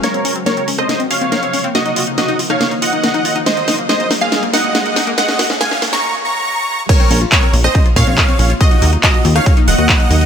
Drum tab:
CC |----------------|----------------|----------------|----------------|
HH |xxoxxxoxxxoxxxox|xxoxxxoxxxoxxxox|xxoxxxoxxxoxxxox|xxoxxxox--------|
CP |----------------|----------------|----------------|----------------|
SD |o---o--ro---o---|o---o--ro---o---|o-o-o-o-o-o-o-o-|oooooooo--------|
BD |----------------|----------------|----------------|----------------|

CC |x---------------|----------------|
HH |xxoxxxoxxxo-xxox|xxo-xxoxxxo-xxox|
CP |----x-------x---|----x-------x---|
SD |-------r--------|-------r--------|
BD |o---o---o-o-o---|o---o---o---o---|